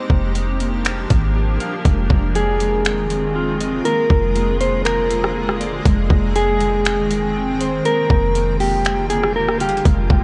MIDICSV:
0, 0, Header, 1, 6, 480
1, 0, Start_track
1, 0, Tempo, 500000
1, 1779, Time_signature, 4, 2, 24, 8
1, 9828, End_track
2, 0, Start_track
2, 0, Title_t, "Clean electric guitar"
2, 0, Program_c, 0, 27
2, 2261, Note_on_c, 0, 68, 95
2, 3662, Note_off_c, 0, 68, 0
2, 3698, Note_on_c, 0, 70, 103
2, 4380, Note_off_c, 0, 70, 0
2, 4422, Note_on_c, 0, 72, 81
2, 4649, Note_off_c, 0, 72, 0
2, 4657, Note_on_c, 0, 70, 85
2, 5580, Note_off_c, 0, 70, 0
2, 6102, Note_on_c, 0, 68, 96
2, 7502, Note_off_c, 0, 68, 0
2, 7541, Note_on_c, 0, 70, 102
2, 8222, Note_off_c, 0, 70, 0
2, 8261, Note_on_c, 0, 67, 70
2, 8711, Note_off_c, 0, 67, 0
2, 8736, Note_on_c, 0, 68, 83
2, 8966, Note_off_c, 0, 68, 0
2, 8986, Note_on_c, 0, 70, 90
2, 9211, Note_off_c, 0, 70, 0
2, 9226, Note_on_c, 0, 67, 72
2, 9451, Note_off_c, 0, 67, 0
2, 9828, End_track
3, 0, Start_track
3, 0, Title_t, "Ambient pad"
3, 0, Program_c, 1, 92
3, 0, Note_on_c, 1, 53, 80
3, 0, Note_on_c, 1, 58, 75
3, 0, Note_on_c, 1, 62, 74
3, 0, Note_on_c, 1, 67, 76
3, 0, Note_on_c, 1, 70, 86
3, 1741, Note_off_c, 1, 67, 0
3, 1761, Note_off_c, 1, 58, 0
3, 1761, Note_off_c, 1, 62, 0
3, 1762, Note_off_c, 1, 53, 0
3, 1762, Note_off_c, 1, 70, 0
3, 1778, Note_on_c, 1, 68, 90
3, 1779, Note_on_c, 1, 51, 85
3, 1779, Note_on_c, 1, 56, 76
3, 1779, Note_on_c, 1, 60, 75
3, 1779, Note_on_c, 1, 65, 79
3, 3680, Note_off_c, 1, 51, 0
3, 3680, Note_off_c, 1, 60, 0
3, 3699, Note_on_c, 1, 50, 85
3, 3699, Note_on_c, 1, 58, 73
3, 5581, Note_off_c, 1, 65, 0
3, 5600, Note_off_c, 1, 50, 0
3, 5600, Note_off_c, 1, 58, 0
3, 5620, Note_on_c, 1, 60, 72
3, 5620, Note_on_c, 1, 79, 74
3, 5621, Note_on_c, 1, 51, 83
3, 7500, Note_off_c, 1, 56, 0
3, 7500, Note_off_c, 1, 68, 0
3, 7521, Note_off_c, 1, 51, 0
3, 7521, Note_off_c, 1, 60, 0
3, 7540, Note_on_c, 1, 50, 82
3, 7540, Note_on_c, 1, 55, 75
3, 7540, Note_on_c, 1, 58, 74
3, 7540, Note_on_c, 1, 65, 74
3, 9421, Note_off_c, 1, 79, 0
3, 9440, Note_off_c, 1, 50, 0
3, 9440, Note_off_c, 1, 55, 0
3, 9440, Note_off_c, 1, 58, 0
3, 9458, Note_on_c, 1, 60, 74
3, 9460, Note_on_c, 1, 51, 82
3, 9460, Note_on_c, 1, 56, 77
3, 9460, Note_on_c, 1, 68, 91
3, 9828, Note_off_c, 1, 51, 0
3, 9828, Note_off_c, 1, 56, 0
3, 9828, Note_off_c, 1, 60, 0
3, 9828, Note_off_c, 1, 65, 0
3, 9828, Note_off_c, 1, 68, 0
3, 9828, End_track
4, 0, Start_track
4, 0, Title_t, "Harp"
4, 0, Program_c, 2, 46
4, 0, Note_on_c, 2, 58, 93
4, 0, Note_on_c, 2, 67, 86
4, 0, Note_on_c, 2, 72, 93
4, 97, Note_off_c, 2, 58, 0
4, 101, Note_on_c, 2, 58, 70
4, 330, Note_off_c, 2, 58, 0
4, 334, Note_on_c, 2, 58, 69
4, 573, Note_off_c, 2, 58, 0
4, 577, Note_on_c, 2, 58, 80
4, 1052, Note_off_c, 2, 58, 0
4, 1056, Note_on_c, 2, 58, 72
4, 1296, Note_off_c, 2, 67, 0
4, 1300, Note_on_c, 2, 67, 90
4, 1518, Note_off_c, 2, 72, 0
4, 1537, Note_on_c, 2, 77, 79
4, 1779, Note_on_c, 2, 56, 91
4, 1836, Note_off_c, 2, 67, 0
4, 2012, Note_off_c, 2, 56, 0
4, 2024, Note_on_c, 2, 56, 75
4, 2245, Note_off_c, 2, 56, 0
4, 2257, Note_on_c, 2, 56, 70
4, 2490, Note_off_c, 2, 56, 0
4, 2502, Note_on_c, 2, 56, 91
4, 2962, Note_off_c, 2, 56, 0
4, 2974, Note_on_c, 2, 56, 72
4, 3134, Note_off_c, 2, 77, 0
4, 3217, Note_on_c, 2, 65, 95
4, 3460, Note_on_c, 2, 75, 82
4, 3694, Note_off_c, 2, 58, 0
4, 3697, Note_on_c, 2, 58, 91
4, 3747, Note_off_c, 2, 56, 0
4, 3936, Note_off_c, 2, 58, 0
4, 3940, Note_on_c, 2, 58, 71
4, 4180, Note_off_c, 2, 58, 0
4, 4184, Note_on_c, 2, 58, 76
4, 4411, Note_off_c, 2, 58, 0
4, 4415, Note_on_c, 2, 58, 84
4, 4897, Note_off_c, 2, 58, 0
4, 4900, Note_on_c, 2, 58, 72
4, 5135, Note_on_c, 2, 68, 98
4, 5172, Note_off_c, 2, 75, 0
4, 5375, Note_on_c, 2, 74, 83
4, 5618, Note_on_c, 2, 56, 95
4, 5639, Note_off_c, 2, 65, 0
4, 5850, Note_off_c, 2, 56, 0
4, 5862, Note_on_c, 2, 56, 73
4, 6088, Note_off_c, 2, 56, 0
4, 6099, Note_on_c, 2, 56, 78
4, 6330, Note_off_c, 2, 56, 0
4, 6341, Note_on_c, 2, 56, 95
4, 6808, Note_off_c, 2, 56, 0
4, 6820, Note_on_c, 2, 56, 72
4, 7065, Note_on_c, 2, 79, 88
4, 7122, Note_off_c, 2, 68, 0
4, 7148, Note_off_c, 2, 74, 0
4, 7298, Note_on_c, 2, 72, 95
4, 7536, Note_off_c, 2, 58, 0
4, 7540, Note_on_c, 2, 58, 90
4, 7587, Note_off_c, 2, 56, 0
4, 7779, Note_off_c, 2, 58, 0
4, 7783, Note_on_c, 2, 58, 70
4, 8011, Note_off_c, 2, 58, 0
4, 8015, Note_on_c, 2, 58, 76
4, 8255, Note_off_c, 2, 58, 0
4, 8258, Note_on_c, 2, 58, 81
4, 8555, Note_off_c, 2, 79, 0
4, 8734, Note_off_c, 2, 58, 0
4, 8738, Note_on_c, 2, 58, 72
4, 8980, Note_on_c, 2, 67, 91
4, 9199, Note_off_c, 2, 72, 0
4, 9217, Note_on_c, 2, 77, 81
4, 9458, Note_on_c, 2, 56, 91
4, 9515, Note_off_c, 2, 67, 0
4, 9693, Note_off_c, 2, 56, 0
4, 9704, Note_on_c, 2, 56, 74
4, 9828, Note_off_c, 2, 56, 0
4, 9828, Note_off_c, 2, 58, 0
4, 9828, Note_off_c, 2, 77, 0
4, 9828, End_track
5, 0, Start_track
5, 0, Title_t, "808-style bass"
5, 0, Program_c, 3, 38
5, 95, Note_on_c, 3, 29, 99
5, 1019, Note_off_c, 3, 29, 0
5, 1060, Note_on_c, 3, 32, 105
5, 1520, Note_off_c, 3, 32, 0
5, 1779, Note_on_c, 3, 29, 115
5, 2009, Note_off_c, 3, 29, 0
5, 2016, Note_on_c, 3, 29, 105
5, 3659, Note_off_c, 3, 29, 0
5, 3936, Note_on_c, 3, 29, 105
5, 5579, Note_off_c, 3, 29, 0
5, 5619, Note_on_c, 3, 29, 113
5, 5850, Note_off_c, 3, 29, 0
5, 5857, Note_on_c, 3, 29, 106
5, 7500, Note_off_c, 3, 29, 0
5, 7777, Note_on_c, 3, 29, 103
5, 9420, Note_off_c, 3, 29, 0
5, 9459, Note_on_c, 3, 29, 111
5, 9690, Note_off_c, 3, 29, 0
5, 9696, Note_on_c, 3, 29, 104
5, 9828, Note_off_c, 3, 29, 0
5, 9828, End_track
6, 0, Start_track
6, 0, Title_t, "Drums"
6, 96, Note_on_c, 9, 36, 91
6, 192, Note_off_c, 9, 36, 0
6, 338, Note_on_c, 9, 42, 73
6, 434, Note_off_c, 9, 42, 0
6, 579, Note_on_c, 9, 42, 74
6, 675, Note_off_c, 9, 42, 0
6, 817, Note_on_c, 9, 42, 75
6, 828, Note_on_c, 9, 26, 117
6, 913, Note_off_c, 9, 42, 0
6, 924, Note_off_c, 9, 26, 0
6, 1058, Note_on_c, 9, 42, 82
6, 1060, Note_on_c, 9, 36, 91
6, 1154, Note_off_c, 9, 42, 0
6, 1156, Note_off_c, 9, 36, 0
6, 1541, Note_on_c, 9, 42, 75
6, 1637, Note_off_c, 9, 42, 0
6, 1778, Note_on_c, 9, 42, 79
6, 1779, Note_on_c, 9, 36, 112
6, 1874, Note_off_c, 9, 42, 0
6, 1875, Note_off_c, 9, 36, 0
6, 2016, Note_on_c, 9, 36, 99
6, 2112, Note_off_c, 9, 36, 0
6, 2258, Note_on_c, 9, 42, 79
6, 2354, Note_off_c, 9, 42, 0
6, 2498, Note_on_c, 9, 42, 75
6, 2594, Note_off_c, 9, 42, 0
6, 2736, Note_on_c, 9, 42, 76
6, 2748, Note_on_c, 9, 26, 122
6, 2832, Note_off_c, 9, 42, 0
6, 2844, Note_off_c, 9, 26, 0
6, 2978, Note_on_c, 9, 42, 84
6, 3074, Note_off_c, 9, 42, 0
6, 3461, Note_on_c, 9, 42, 75
6, 3557, Note_off_c, 9, 42, 0
6, 3699, Note_on_c, 9, 42, 74
6, 3795, Note_off_c, 9, 42, 0
6, 3936, Note_on_c, 9, 36, 99
6, 4032, Note_off_c, 9, 36, 0
6, 4180, Note_on_c, 9, 42, 78
6, 4276, Note_off_c, 9, 42, 0
6, 4420, Note_on_c, 9, 42, 72
6, 4516, Note_off_c, 9, 42, 0
6, 4657, Note_on_c, 9, 42, 78
6, 4669, Note_on_c, 9, 26, 118
6, 4753, Note_off_c, 9, 42, 0
6, 4765, Note_off_c, 9, 26, 0
6, 4900, Note_on_c, 9, 42, 86
6, 4996, Note_off_c, 9, 42, 0
6, 5029, Note_on_c, 9, 37, 95
6, 5125, Note_off_c, 9, 37, 0
6, 5268, Note_on_c, 9, 37, 93
6, 5364, Note_off_c, 9, 37, 0
6, 5383, Note_on_c, 9, 42, 78
6, 5479, Note_off_c, 9, 42, 0
6, 5619, Note_on_c, 9, 36, 119
6, 5620, Note_on_c, 9, 42, 78
6, 5715, Note_off_c, 9, 36, 0
6, 5716, Note_off_c, 9, 42, 0
6, 5857, Note_on_c, 9, 36, 99
6, 5953, Note_off_c, 9, 36, 0
6, 6101, Note_on_c, 9, 42, 77
6, 6197, Note_off_c, 9, 42, 0
6, 6340, Note_on_c, 9, 42, 74
6, 6436, Note_off_c, 9, 42, 0
6, 6578, Note_on_c, 9, 42, 74
6, 6589, Note_on_c, 9, 26, 122
6, 6674, Note_off_c, 9, 42, 0
6, 6685, Note_off_c, 9, 26, 0
6, 6819, Note_on_c, 9, 42, 84
6, 6915, Note_off_c, 9, 42, 0
6, 7301, Note_on_c, 9, 42, 81
6, 7397, Note_off_c, 9, 42, 0
6, 7540, Note_on_c, 9, 42, 81
6, 7636, Note_off_c, 9, 42, 0
6, 7777, Note_on_c, 9, 36, 100
6, 7873, Note_off_c, 9, 36, 0
6, 8020, Note_on_c, 9, 42, 77
6, 8116, Note_off_c, 9, 42, 0
6, 8259, Note_on_c, 9, 46, 58
6, 8355, Note_off_c, 9, 46, 0
6, 8497, Note_on_c, 9, 42, 74
6, 8508, Note_on_c, 9, 26, 119
6, 8593, Note_off_c, 9, 42, 0
6, 8604, Note_off_c, 9, 26, 0
6, 8738, Note_on_c, 9, 42, 85
6, 8834, Note_off_c, 9, 42, 0
6, 8868, Note_on_c, 9, 37, 97
6, 8964, Note_off_c, 9, 37, 0
6, 9106, Note_on_c, 9, 37, 94
6, 9202, Note_off_c, 9, 37, 0
6, 9219, Note_on_c, 9, 42, 80
6, 9299, Note_off_c, 9, 42, 0
6, 9299, Note_on_c, 9, 42, 63
6, 9379, Note_off_c, 9, 42, 0
6, 9379, Note_on_c, 9, 42, 46
6, 9459, Note_off_c, 9, 42, 0
6, 9459, Note_on_c, 9, 36, 119
6, 9459, Note_on_c, 9, 42, 77
6, 9555, Note_off_c, 9, 36, 0
6, 9555, Note_off_c, 9, 42, 0
6, 9696, Note_on_c, 9, 36, 102
6, 9792, Note_off_c, 9, 36, 0
6, 9828, End_track
0, 0, End_of_file